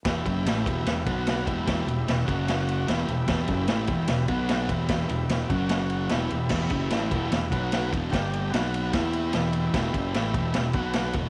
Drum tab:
CC |--------|--------|--------|--------|
RD |xxxxxxxx|xxxxxxxx|xxxxxxxx|xxxxxxxx|
SD |o-o-o-o-|o-o-o-o-|o-o-o-o-|o-o-o-o-|
BD |oo-o-o-o|o--o----|oo-o-o-o|o--o----|

CC |x-------|--------|--------|
RD |-xxxxxxx|xxxxxxxx|xxxxxxxx|
SD |o-o-o-o-|o-o-o-o-|o-o-o-o-|
BD |oo-o-o-o|o---o---|oo-o-o-o|